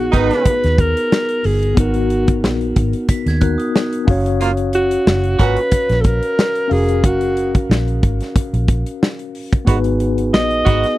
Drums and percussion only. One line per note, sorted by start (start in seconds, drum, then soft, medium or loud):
0.13 kick medium
0.13 closed hi-hat medium
0.31 snare soft
0.31 closed hi-hat soft
0.45 kick medium
0.45 closed hi-hat loud
0.64 snare soft
0.64 closed hi-hat medium
0.78 kick medium
0.78 closed hi-hat medium
0.97 closed hi-hat medium
1.12 snare loud
1.29 closed hi-hat medium
1.44 open hi-hat medium
1.63 closed hi-hat medium
1.77 kick loud
1.77 closed hi-hat medium
1.94 closed hi-hat soft
2.10 closed hi-hat medium
2.28 kick medium
2.28 closed hi-hat medium
2.44 snare loud
2.61 closed hi-hat soft
2.76 kick medium
2.76 closed hi-hat medium
2.93 closed hi-hat soft
3.09 kick medium
3.09 closed hi-hat loud
3.27 snare soft
3.27 closed hi-hat medium
3.41 kick medium
3.41 closed hi-hat medium
3.60 closed hi-hat medium
3.76 snare loud
3.93 closed hi-hat medium
4.08 kick loud
4.08 open hi-hat medium
4.26 closed hi-hat medium
4.41 closed hi-hat medium
4.57 closed hi-hat soft
4.73 closed hi-hat medium
4.91 closed hi-hat medium
5.07 snare loud
5.24 closed hi-hat soft
5.39 kick medium
5.39 closed hi-hat medium
5.57 closed hi-hat medium
5.72 kick medium
5.72 closed hi-hat loud
5.89 snare soft
5.89 closed hi-hat medium
6.04 kick medium
6.04 closed hi-hat medium
6.23 closed hi-hat medium
6.39 snare loud
6.55 closed hi-hat soft
6.71 open hi-hat medium
6.89 closed hi-hat medium
7.04 kick loud
7.04 closed hi-hat medium
7.21 closed hi-hat medium
7.37 closed hi-hat medium
7.55 kick medium
7.55 closed hi-hat medium
7.71 snare loud
7.88 closed hi-hat soft
8.03 kick medium
8.03 closed hi-hat medium
8.21 snare soft
8.21 closed hi-hat medium
8.36 kick medium
8.36 closed hi-hat loud
8.54 closed hi-hat medium
8.68 kick medium
8.68 closed hi-hat medium
8.86 closed hi-hat medium
9.03 snare loud
9.19 closed hi-hat soft
9.35 open hi-hat medium
9.53 kick medium
9.53 closed hi-hat medium
9.67 kick loud
9.67 closed hi-hat medium
9.84 closed hi-hat soft
10.00 closed hi-hat medium
10.18 closed hi-hat medium
10.34 snare loud
10.51 closed hi-hat soft
10.66 kick medium
10.66 closed hi-hat medium
10.84 snare soft
10.84 closed hi-hat soft